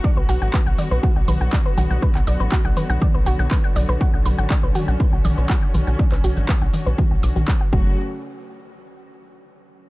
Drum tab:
HH |--o---o---o---o-|--o---o---o---o-|--o---o---o---o-|-oo---o---o-----|
SH |x-xxx-xxx-xxx-xx|x-xxx-xxx-xxx-xx|x-xxx-xxx-xxx-xx|x-xxx-xxx-xxx---|
CP |----x-------x---|-x--x-------x---|----x-------x---|-x--x-------x---|
T2 |------o---o---o-|------o-o-------|------o---o---o-|------o-o--o----|
BD |o---o---o---o---|o---o---o---o---|o---o---o---o---|o---o---o---o-o-|

HH |----------------|
SH |----------------|
CP |----------------|
T2 |----------------|
BD |----------------|